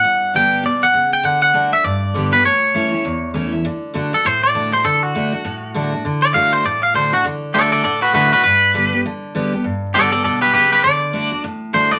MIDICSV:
0, 0, Header, 1, 3, 480
1, 0, Start_track
1, 0, Key_signature, 2, "major"
1, 0, Tempo, 299700
1, 74, Time_signature, 4, 2, 24, 8
1, 19203, End_track
2, 0, Start_track
2, 0, Title_t, "Clean electric guitar"
2, 0, Program_c, 0, 27
2, 0, Note_on_c, 0, 78, 98
2, 569, Note_off_c, 0, 78, 0
2, 575, Note_on_c, 0, 79, 105
2, 1012, Note_off_c, 0, 79, 0
2, 1052, Note_on_c, 0, 74, 86
2, 1329, Note_on_c, 0, 78, 95
2, 1342, Note_off_c, 0, 74, 0
2, 1808, Note_off_c, 0, 78, 0
2, 1815, Note_on_c, 0, 79, 89
2, 2001, Note_off_c, 0, 79, 0
2, 2001, Note_on_c, 0, 78, 103
2, 2258, Note_off_c, 0, 78, 0
2, 2277, Note_on_c, 0, 78, 95
2, 2766, Note_off_c, 0, 78, 0
2, 2772, Note_on_c, 0, 76, 89
2, 2954, Note_off_c, 0, 76, 0
2, 2954, Note_on_c, 0, 74, 85
2, 3720, Note_off_c, 0, 74, 0
2, 3727, Note_on_c, 0, 71, 85
2, 3923, Note_off_c, 0, 71, 0
2, 3931, Note_on_c, 0, 73, 84
2, 5301, Note_off_c, 0, 73, 0
2, 6635, Note_on_c, 0, 69, 88
2, 6820, Note_off_c, 0, 69, 0
2, 6820, Note_on_c, 0, 72, 84
2, 7090, Note_off_c, 0, 72, 0
2, 7103, Note_on_c, 0, 74, 86
2, 7562, Note_off_c, 0, 74, 0
2, 7583, Note_on_c, 0, 72, 91
2, 7761, Note_off_c, 0, 72, 0
2, 7764, Note_on_c, 0, 69, 89
2, 8055, Note_off_c, 0, 69, 0
2, 8055, Note_on_c, 0, 66, 83
2, 9449, Note_off_c, 0, 66, 0
2, 9965, Note_on_c, 0, 74, 96
2, 10152, Note_off_c, 0, 74, 0
2, 10158, Note_on_c, 0, 77, 94
2, 10440, Note_off_c, 0, 77, 0
2, 10456, Note_on_c, 0, 72, 92
2, 10638, Note_off_c, 0, 72, 0
2, 10660, Note_on_c, 0, 74, 87
2, 10931, Note_off_c, 0, 74, 0
2, 10942, Note_on_c, 0, 77, 74
2, 11120, Note_off_c, 0, 77, 0
2, 11139, Note_on_c, 0, 72, 89
2, 11411, Note_off_c, 0, 72, 0
2, 11429, Note_on_c, 0, 66, 99
2, 11604, Note_off_c, 0, 66, 0
2, 12076, Note_on_c, 0, 69, 82
2, 12085, Note_on_c, 0, 74, 89
2, 12345, Note_off_c, 0, 69, 0
2, 12354, Note_off_c, 0, 74, 0
2, 12364, Note_on_c, 0, 69, 85
2, 12373, Note_on_c, 0, 74, 99
2, 12536, Note_off_c, 0, 69, 0
2, 12545, Note_off_c, 0, 74, 0
2, 12555, Note_on_c, 0, 69, 70
2, 12564, Note_on_c, 0, 74, 80
2, 12826, Note_off_c, 0, 69, 0
2, 12843, Note_off_c, 0, 74, 0
2, 12847, Note_on_c, 0, 66, 72
2, 12852, Note_on_c, 0, 71, 68
2, 13018, Note_off_c, 0, 66, 0
2, 13033, Note_off_c, 0, 71, 0
2, 13038, Note_on_c, 0, 66, 70
2, 13051, Note_on_c, 0, 71, 82
2, 13308, Note_off_c, 0, 66, 0
2, 13323, Note_off_c, 0, 71, 0
2, 13325, Note_on_c, 0, 66, 78
2, 13342, Note_on_c, 0, 71, 90
2, 13493, Note_off_c, 0, 71, 0
2, 13504, Note_off_c, 0, 66, 0
2, 13512, Note_on_c, 0, 71, 96
2, 14446, Note_off_c, 0, 71, 0
2, 15924, Note_on_c, 0, 69, 100
2, 15935, Note_on_c, 0, 74, 115
2, 16194, Note_off_c, 0, 69, 0
2, 16195, Note_off_c, 0, 74, 0
2, 16211, Note_on_c, 0, 69, 84
2, 16220, Note_on_c, 0, 74, 75
2, 16387, Note_off_c, 0, 69, 0
2, 16396, Note_off_c, 0, 74, 0
2, 16406, Note_on_c, 0, 69, 75
2, 16417, Note_on_c, 0, 74, 67
2, 16672, Note_off_c, 0, 69, 0
2, 16682, Note_on_c, 0, 67, 73
2, 16685, Note_off_c, 0, 74, 0
2, 16691, Note_on_c, 0, 71, 84
2, 16854, Note_off_c, 0, 67, 0
2, 16870, Note_off_c, 0, 71, 0
2, 16873, Note_on_c, 0, 67, 75
2, 16889, Note_on_c, 0, 71, 94
2, 17144, Note_off_c, 0, 67, 0
2, 17157, Note_off_c, 0, 71, 0
2, 17172, Note_on_c, 0, 67, 79
2, 17179, Note_on_c, 0, 71, 84
2, 17348, Note_off_c, 0, 67, 0
2, 17354, Note_off_c, 0, 71, 0
2, 17361, Note_on_c, 0, 74, 111
2, 18290, Note_off_c, 0, 74, 0
2, 18805, Note_on_c, 0, 72, 109
2, 19081, Note_off_c, 0, 72, 0
2, 19081, Note_on_c, 0, 74, 99
2, 19203, Note_off_c, 0, 74, 0
2, 19203, End_track
3, 0, Start_track
3, 0, Title_t, "Steel-string acoustic guitar"
3, 0, Program_c, 1, 25
3, 67, Note_on_c, 1, 43, 80
3, 541, Note_on_c, 1, 50, 81
3, 547, Note_on_c, 1, 55, 86
3, 558, Note_on_c, 1, 59, 93
3, 569, Note_on_c, 1, 67, 98
3, 993, Note_off_c, 1, 43, 0
3, 1009, Note_off_c, 1, 50, 0
3, 1012, Note_off_c, 1, 55, 0
3, 1014, Note_on_c, 1, 47, 92
3, 1018, Note_off_c, 1, 59, 0
3, 1023, Note_off_c, 1, 67, 0
3, 1486, Note_off_c, 1, 47, 0
3, 1500, Note_on_c, 1, 49, 88
3, 1969, Note_off_c, 1, 49, 0
3, 1975, Note_on_c, 1, 50, 88
3, 2440, Note_off_c, 1, 50, 0
3, 2459, Note_on_c, 1, 50, 90
3, 2465, Note_on_c, 1, 57, 97
3, 2472, Note_on_c, 1, 62, 92
3, 2484, Note_on_c, 1, 66, 102
3, 2731, Note_off_c, 1, 66, 0
3, 2746, Note_off_c, 1, 50, 0
3, 2749, Note_off_c, 1, 57, 0
3, 2750, Note_on_c, 1, 66, 60
3, 2752, Note_off_c, 1, 62, 0
3, 2773, Note_on_c, 1, 62, 49
3, 2941, Note_off_c, 1, 66, 0
3, 2947, Note_on_c, 1, 43, 97
3, 2953, Note_off_c, 1, 62, 0
3, 3430, Note_on_c, 1, 50, 88
3, 3440, Note_on_c, 1, 55, 92
3, 3449, Note_on_c, 1, 59, 99
3, 3452, Note_on_c, 1, 67, 92
3, 3702, Note_off_c, 1, 67, 0
3, 3712, Note_off_c, 1, 50, 0
3, 3717, Note_off_c, 1, 55, 0
3, 3721, Note_off_c, 1, 59, 0
3, 3721, Note_on_c, 1, 67, 61
3, 3739, Note_on_c, 1, 59, 53
3, 3874, Note_off_c, 1, 43, 0
3, 3907, Note_off_c, 1, 67, 0
3, 3916, Note_off_c, 1, 59, 0
3, 3921, Note_on_c, 1, 45, 95
3, 4396, Note_on_c, 1, 52, 96
3, 4397, Note_on_c, 1, 57, 83
3, 4406, Note_on_c, 1, 61, 91
3, 4413, Note_on_c, 1, 64, 96
3, 4663, Note_off_c, 1, 64, 0
3, 4675, Note_off_c, 1, 52, 0
3, 4675, Note_off_c, 1, 57, 0
3, 4680, Note_off_c, 1, 61, 0
3, 4682, Note_on_c, 1, 64, 62
3, 4703, Note_on_c, 1, 61, 52
3, 4842, Note_off_c, 1, 45, 0
3, 4868, Note_off_c, 1, 64, 0
3, 4878, Note_off_c, 1, 61, 0
3, 4882, Note_on_c, 1, 40, 102
3, 5348, Note_on_c, 1, 52, 91
3, 5356, Note_on_c, 1, 57, 84
3, 5356, Note_on_c, 1, 61, 94
3, 5370, Note_on_c, 1, 64, 95
3, 5621, Note_off_c, 1, 64, 0
3, 5631, Note_off_c, 1, 52, 0
3, 5635, Note_off_c, 1, 57, 0
3, 5635, Note_off_c, 1, 61, 0
3, 5641, Note_on_c, 1, 64, 54
3, 5665, Note_on_c, 1, 61, 45
3, 5803, Note_off_c, 1, 40, 0
3, 5827, Note_off_c, 1, 64, 0
3, 5840, Note_off_c, 1, 61, 0
3, 5841, Note_on_c, 1, 50, 91
3, 6284, Note_off_c, 1, 50, 0
3, 6303, Note_on_c, 1, 50, 85
3, 6314, Note_on_c, 1, 57, 98
3, 6327, Note_on_c, 1, 62, 99
3, 6328, Note_on_c, 1, 66, 94
3, 6581, Note_off_c, 1, 66, 0
3, 6589, Note_off_c, 1, 50, 0
3, 6594, Note_off_c, 1, 57, 0
3, 6600, Note_on_c, 1, 66, 60
3, 6601, Note_off_c, 1, 62, 0
3, 6623, Note_on_c, 1, 62, 51
3, 6787, Note_off_c, 1, 66, 0
3, 6799, Note_off_c, 1, 62, 0
3, 6804, Note_on_c, 1, 45, 95
3, 7276, Note_on_c, 1, 50, 85
3, 7279, Note_on_c, 1, 57, 82
3, 7288, Note_on_c, 1, 62, 85
3, 7297, Note_on_c, 1, 66, 93
3, 7543, Note_off_c, 1, 66, 0
3, 7556, Note_off_c, 1, 50, 0
3, 7557, Note_off_c, 1, 57, 0
3, 7562, Note_off_c, 1, 62, 0
3, 7563, Note_on_c, 1, 66, 58
3, 7590, Note_on_c, 1, 62, 45
3, 7724, Note_off_c, 1, 45, 0
3, 7749, Note_off_c, 1, 66, 0
3, 7755, Note_on_c, 1, 50, 89
3, 7763, Note_off_c, 1, 62, 0
3, 8224, Note_off_c, 1, 50, 0
3, 8244, Note_on_c, 1, 50, 84
3, 8254, Note_on_c, 1, 57, 101
3, 8258, Note_on_c, 1, 62, 99
3, 8265, Note_on_c, 1, 66, 91
3, 8505, Note_off_c, 1, 66, 0
3, 8519, Note_off_c, 1, 50, 0
3, 8522, Note_off_c, 1, 62, 0
3, 8524, Note_on_c, 1, 66, 65
3, 8525, Note_off_c, 1, 57, 0
3, 8541, Note_on_c, 1, 62, 50
3, 8710, Note_off_c, 1, 66, 0
3, 8718, Note_off_c, 1, 62, 0
3, 8721, Note_on_c, 1, 45, 100
3, 9200, Note_on_c, 1, 50, 93
3, 9208, Note_on_c, 1, 57, 89
3, 9216, Note_on_c, 1, 62, 94
3, 9226, Note_on_c, 1, 66, 107
3, 9477, Note_off_c, 1, 66, 0
3, 9478, Note_off_c, 1, 50, 0
3, 9482, Note_off_c, 1, 57, 0
3, 9486, Note_off_c, 1, 62, 0
3, 9496, Note_on_c, 1, 66, 62
3, 9516, Note_on_c, 1, 62, 45
3, 9642, Note_off_c, 1, 45, 0
3, 9676, Note_off_c, 1, 66, 0
3, 9686, Note_off_c, 1, 62, 0
3, 9686, Note_on_c, 1, 50, 95
3, 10140, Note_off_c, 1, 50, 0
3, 10159, Note_on_c, 1, 50, 87
3, 10160, Note_on_c, 1, 57, 89
3, 10175, Note_on_c, 1, 62, 98
3, 10178, Note_on_c, 1, 66, 103
3, 10621, Note_off_c, 1, 50, 0
3, 10621, Note_off_c, 1, 57, 0
3, 10628, Note_off_c, 1, 62, 0
3, 10630, Note_off_c, 1, 66, 0
3, 10643, Note_on_c, 1, 45, 97
3, 11115, Note_on_c, 1, 50, 89
3, 11125, Note_on_c, 1, 57, 85
3, 11129, Note_on_c, 1, 62, 85
3, 11136, Note_on_c, 1, 66, 96
3, 11389, Note_off_c, 1, 66, 0
3, 11395, Note_off_c, 1, 50, 0
3, 11400, Note_off_c, 1, 57, 0
3, 11402, Note_off_c, 1, 62, 0
3, 11409, Note_on_c, 1, 66, 61
3, 11432, Note_on_c, 1, 62, 45
3, 11563, Note_off_c, 1, 45, 0
3, 11592, Note_off_c, 1, 66, 0
3, 11603, Note_on_c, 1, 50, 96
3, 11604, Note_off_c, 1, 62, 0
3, 12053, Note_off_c, 1, 50, 0
3, 12072, Note_on_c, 1, 50, 88
3, 12078, Note_on_c, 1, 57, 94
3, 12086, Note_on_c, 1, 62, 95
3, 12092, Note_on_c, 1, 66, 92
3, 12537, Note_off_c, 1, 50, 0
3, 12540, Note_off_c, 1, 57, 0
3, 12543, Note_off_c, 1, 62, 0
3, 12547, Note_off_c, 1, 66, 0
3, 12554, Note_on_c, 1, 45, 88
3, 13023, Note_on_c, 1, 50, 92
3, 13032, Note_on_c, 1, 57, 92
3, 13039, Note_on_c, 1, 62, 94
3, 13044, Note_on_c, 1, 66, 92
3, 13303, Note_off_c, 1, 66, 0
3, 13309, Note_off_c, 1, 50, 0
3, 13313, Note_off_c, 1, 57, 0
3, 13317, Note_off_c, 1, 62, 0
3, 13322, Note_on_c, 1, 66, 56
3, 13346, Note_on_c, 1, 62, 50
3, 13478, Note_off_c, 1, 45, 0
3, 13508, Note_off_c, 1, 66, 0
3, 13517, Note_on_c, 1, 43, 90
3, 13521, Note_off_c, 1, 62, 0
3, 13995, Note_on_c, 1, 50, 91
3, 14005, Note_on_c, 1, 55, 93
3, 14016, Note_on_c, 1, 59, 88
3, 14020, Note_on_c, 1, 67, 103
3, 14275, Note_off_c, 1, 50, 0
3, 14280, Note_off_c, 1, 55, 0
3, 14280, Note_off_c, 1, 67, 0
3, 14285, Note_off_c, 1, 59, 0
3, 14299, Note_on_c, 1, 67, 64
3, 14327, Note_on_c, 1, 59, 53
3, 14440, Note_off_c, 1, 43, 0
3, 14477, Note_off_c, 1, 67, 0
3, 14491, Note_off_c, 1, 59, 0
3, 14501, Note_on_c, 1, 50, 94
3, 14949, Note_off_c, 1, 50, 0
3, 14968, Note_on_c, 1, 50, 95
3, 14974, Note_on_c, 1, 55, 94
3, 14983, Note_on_c, 1, 59, 94
3, 14993, Note_on_c, 1, 67, 99
3, 15241, Note_off_c, 1, 50, 0
3, 15244, Note_off_c, 1, 55, 0
3, 15244, Note_off_c, 1, 67, 0
3, 15249, Note_off_c, 1, 59, 0
3, 15263, Note_on_c, 1, 67, 63
3, 15284, Note_on_c, 1, 59, 49
3, 15438, Note_off_c, 1, 67, 0
3, 15441, Note_on_c, 1, 43, 82
3, 15449, Note_off_c, 1, 59, 0
3, 15925, Note_on_c, 1, 50, 84
3, 15940, Note_on_c, 1, 55, 101
3, 15945, Note_on_c, 1, 67, 106
3, 15946, Note_on_c, 1, 59, 86
3, 16193, Note_off_c, 1, 67, 0
3, 16199, Note_off_c, 1, 50, 0
3, 16207, Note_off_c, 1, 55, 0
3, 16210, Note_off_c, 1, 59, 0
3, 16212, Note_on_c, 1, 67, 62
3, 16243, Note_on_c, 1, 59, 50
3, 16361, Note_off_c, 1, 43, 0
3, 16393, Note_off_c, 1, 67, 0
3, 16408, Note_off_c, 1, 59, 0
3, 16414, Note_on_c, 1, 47, 90
3, 16866, Note_off_c, 1, 47, 0
3, 16892, Note_on_c, 1, 49, 88
3, 17346, Note_off_c, 1, 49, 0
3, 17363, Note_on_c, 1, 50, 87
3, 17807, Note_off_c, 1, 50, 0
3, 17826, Note_on_c, 1, 50, 90
3, 17832, Note_on_c, 1, 57, 91
3, 17839, Note_on_c, 1, 62, 91
3, 17849, Note_on_c, 1, 66, 103
3, 18103, Note_off_c, 1, 66, 0
3, 18109, Note_off_c, 1, 50, 0
3, 18112, Note_off_c, 1, 57, 0
3, 18116, Note_off_c, 1, 62, 0
3, 18122, Note_on_c, 1, 66, 62
3, 18143, Note_on_c, 1, 62, 56
3, 18307, Note_off_c, 1, 66, 0
3, 18317, Note_off_c, 1, 62, 0
3, 18319, Note_on_c, 1, 45, 96
3, 18787, Note_on_c, 1, 50, 83
3, 18794, Note_on_c, 1, 57, 87
3, 18804, Note_on_c, 1, 62, 99
3, 18804, Note_on_c, 1, 66, 102
3, 19060, Note_off_c, 1, 66, 0
3, 19069, Note_off_c, 1, 50, 0
3, 19073, Note_off_c, 1, 57, 0
3, 19078, Note_off_c, 1, 62, 0
3, 19079, Note_on_c, 1, 66, 60
3, 19101, Note_on_c, 1, 62, 50
3, 19203, Note_off_c, 1, 45, 0
3, 19203, Note_off_c, 1, 62, 0
3, 19203, Note_off_c, 1, 66, 0
3, 19203, End_track
0, 0, End_of_file